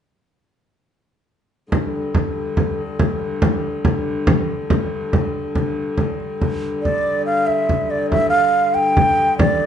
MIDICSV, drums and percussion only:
0, 0, Header, 1, 2, 480
1, 0, Start_track
1, 0, Tempo, 425532
1, 1942, Time_signature, 6, 3, 24, 8
1, 10898, End_track
2, 0, Start_track
2, 0, Title_t, "Frame drum"
2, 1942, Note_on_c, 9, 64, 68
2, 2054, Note_off_c, 9, 64, 0
2, 2419, Note_on_c, 9, 64, 67
2, 2532, Note_off_c, 9, 64, 0
2, 2898, Note_on_c, 9, 64, 62
2, 3011, Note_off_c, 9, 64, 0
2, 3377, Note_on_c, 9, 64, 67
2, 3490, Note_off_c, 9, 64, 0
2, 3857, Note_on_c, 9, 64, 81
2, 3970, Note_off_c, 9, 64, 0
2, 4339, Note_on_c, 9, 64, 70
2, 4451, Note_off_c, 9, 64, 0
2, 4817, Note_on_c, 9, 64, 86
2, 4930, Note_off_c, 9, 64, 0
2, 5304, Note_on_c, 9, 64, 73
2, 5417, Note_off_c, 9, 64, 0
2, 5787, Note_on_c, 9, 64, 68
2, 5900, Note_off_c, 9, 64, 0
2, 6265, Note_on_c, 9, 64, 56
2, 6378, Note_off_c, 9, 64, 0
2, 6740, Note_on_c, 9, 64, 59
2, 6853, Note_off_c, 9, 64, 0
2, 6993, Note_on_c, 9, 64, 19
2, 7106, Note_off_c, 9, 64, 0
2, 7236, Note_on_c, 9, 64, 58
2, 7349, Note_off_c, 9, 64, 0
2, 7728, Note_on_c, 9, 64, 47
2, 7841, Note_off_c, 9, 64, 0
2, 7968, Note_on_c, 9, 64, 22
2, 8080, Note_off_c, 9, 64, 0
2, 8447, Note_on_c, 9, 64, 18
2, 8560, Note_off_c, 9, 64, 0
2, 8678, Note_on_c, 9, 64, 57
2, 8790, Note_off_c, 9, 64, 0
2, 9156, Note_on_c, 9, 64, 59
2, 9269, Note_off_c, 9, 64, 0
2, 9386, Note_on_c, 9, 64, 23
2, 9499, Note_off_c, 9, 64, 0
2, 9878, Note_on_c, 9, 64, 24
2, 9990, Note_off_c, 9, 64, 0
2, 10114, Note_on_c, 9, 64, 70
2, 10227, Note_off_c, 9, 64, 0
2, 10596, Note_on_c, 9, 64, 80
2, 10709, Note_off_c, 9, 64, 0
2, 10827, Note_on_c, 9, 64, 27
2, 10898, Note_off_c, 9, 64, 0
2, 10898, End_track
0, 0, End_of_file